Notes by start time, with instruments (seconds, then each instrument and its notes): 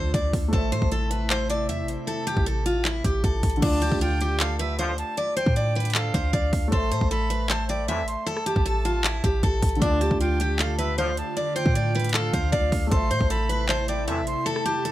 Already playing: 808-style bass D2, grand piano D3 A3 F4 D5, analog synth pad D3 A3 F4, steel-string acoustic guitar C5
0.14 808-style bass D2, steel-string acoustic guitar D5, kick, closed hi-hat
0.33 808-style bass D2, kick, open hi-hat
0.48 grand piano A3 A4
0.53 808-style bass A1, analog synth pad C3 E4, steel-string acoustic guitar A4, grand piano C5, kick, closed hi-hat
0.58 grand piano E5
0.72 808-style bass A2, steel-string acoustic guitar C5, closed hi-hat
0.82 808-style bass A1, kick
0.92 steel-string acoustic guitar A4, closed hi-hat
1.11 steel-string acoustic guitar B4, closed hi-hat
1.30 steel-string acoustic guitar C5, clap, closed hi-hat
1.50 steel-string acoustic guitar D5, closed hi-hat
1.69 808-style bass E2, steel-string acoustic guitar E5, closed hi-hat
1.83 808-style bass A1
1.88 closed hi-hat
2.07 steel-string acoustic guitar A4, closed hi-hat
2.27 steel-string acoustic guitar G4, closed hi-hat
2.37 808-style bass A1, kick
2.46 steel-string acoustic guitar A4, closed hi-hat
2.66 steel-string acoustic guitar F4, closed hi-hat
2.85 steel-string acoustic guitar E4, clap, closed hi-hat
3.04 808-style bass A1, steel-string acoustic guitar G4, kick, closed hi-hat
3.24 808-style bass A1, steel-string acoustic guitar A4, kick, closed hi-hat
3.43 808-style bass A1, kick, closed hi-hat, open hi-hat
3.50 closed hi-hat
3.56 grand piano D3, closed hi-hat
3.60 808-style bass D2, grand piano A3 F4, steel-string acoustic guitar D4, flute A5, kick, closed hi-hat, crash
3.67 grand piano D5
3.82 steel-string acoustic guitar G4, closed hi-hat
3.92 808-style bass D2, kick
4.01 steel-string acoustic guitar F4, flute G5, closed hi-hat
4.21 steel-string acoustic guitar G4, closed hi-hat
4.40 steel-string acoustic guitar A4, flute F5, clap, closed hi-hat
4.59 steel-string acoustic guitar B4, flute E5, closed hi-hat
4.79 brass ensemble A2 D3 F3, steel-string acoustic guitar C5, flute F5, closed hi-hat
4.98 flute A5, closed hi-hat
5.17 steel-string acoustic guitar D5, closed hi-hat
5.36 steel-string acoustic guitar C5, flute G5, closed hi-hat
5.46 808-style bass A2, kick
5.56 steel-string acoustic guitar D5, closed hi-hat
5.75 steel-string acoustic guitar B4, closed hi-hat
5.80 closed hi-hat
5.85 closed hi-hat
5.90 closed hi-hat
5.95 steel-string acoustic guitar A4, flute F5, clap, closed hi-hat
6.14 808-style bass D2, steel-string acoustic guitar C5, kick, closed hi-hat
6.33 808-style bass D2, steel-string acoustic guitar D5, kick, closed hi-hat
6.53 808-style bass D2, kick, open hi-hat
6.68 grand piano A3 A4
6.72 808-style bass A1, steel-string acoustic guitar A4, grand piano C5, flute C6, kick, closed hi-hat
6.77 grand piano E5
6.92 808-style bass A2, steel-string acoustic guitar C5, closed hi-hat
7.01 808-style bass A1, kick
7.11 steel-string acoustic guitar A4, flute B5, closed hi-hat
7.30 steel-string acoustic guitar B4, closed hi-hat
7.50 steel-string acoustic guitar C5, flute A5, clap, closed hi-hat
7.69 steel-string acoustic guitar D5, flute G5, closed hi-hat
7.88 808-style bass E2, brass ensemble A2 C3 E3, steel-string acoustic guitar E5, flute A5, closed hi-hat
8.03 808-style bass A1
8.07 flute C6, closed hi-hat
8.26 steel-string acoustic guitar A4, closed hi-hat
8.37 cross-stick
8.46 steel-string acoustic guitar G4, flute A5, closed hi-hat
8.56 808-style bass A1, kick
8.66 steel-string acoustic guitar A4, closed hi-hat
8.85 steel-string acoustic guitar F4, closed hi-hat
9.04 steel-string acoustic guitar E4, clap, closed hi-hat
9.24 808-style bass A1, steel-string acoustic guitar G4, kick, closed hi-hat
9.43 808-style bass A1, steel-string acoustic guitar A4, kick, closed hi-hat
9.62 808-style bass A1, kick, closed hi-hat, open hi-hat
9.69 closed hi-hat
9.75 grand piano D3, closed hi-hat
9.80 808-style bass D2, analog synth pad D3 A3 F4, grand piano A3 F4, steel-string acoustic guitar D4, flute A5, kick, closed hi-hat
9.86 grand piano D5
10.01 steel-string acoustic guitar G4, closed hi-hat
10.11 808-style bass D2, kick
10.21 steel-string acoustic guitar F4, flute G5, closed hi-hat
10.40 steel-string acoustic guitar G4, closed hi-hat
10.59 steel-string acoustic guitar A4, flute F5, clap, closed hi-hat
10.78 steel-string acoustic guitar B4, flute E5, closed hi-hat
10.98 brass ensemble A2 D3 F3, steel-string acoustic guitar C5, flute F5, closed hi-hat
11.17 flute A5, closed hi-hat
11.37 steel-string acoustic guitar D5, closed hi-hat
11.56 steel-string acoustic guitar C5, flute G5, closed hi-hat
11.66 808-style bass A2, kick
11.75 steel-string acoustic guitar D5, closed hi-hat
11.95 steel-string acoustic guitar B4, closed hi-hat
12.00 closed hi-hat
12.04 closed hi-hat
12.09 closed hi-hat
12.14 steel-string acoustic guitar A4, flute F5, clap
12.33 808-style bass D2, steel-string acoustic guitar C5, kick, closed hi-hat
12.52 808-style bass D2, steel-string acoustic guitar D5, kick, closed hi-hat
12.72 808-style bass D2, kick, open hi-hat
12.87 grand piano A3 A4
12.91 808-style bass A1, analog synth pad C3 E4, steel-string acoustic guitar A4, grand piano C5, flute C6, kick, closed hi-hat
12.97 grand piano E5
13.11 808-style bass A2, steel-string acoustic guitar C5, closed hi-hat
13.21 808-style bass A1, kick
13.30 steel-string acoustic guitar A4, flute B5, closed hi-hat
13.49 steel-string acoustic guitar B4, closed hi-hat
13.69 steel-string acoustic guitar C5, flute A5, clap, closed hi-hat
13.88 steel-string acoustic guitar D5, flute G5, closed hi-hat
14.08 808-style bass E2, brass ensemble A2 C3 E3, steel-string acoustic guitar E5, flute A5, closed hi-hat
14.22 808-style bass A1
14.27 flute C6, closed hi-hat
14.46 steel-string acoustic guitar A4, closed hi-hat
14.56 cross-stick
14.65 steel-string acoustic guitar G4, flute A5, closed hi-hat
14.85 steel-string acoustic guitar A4, closed hi-hat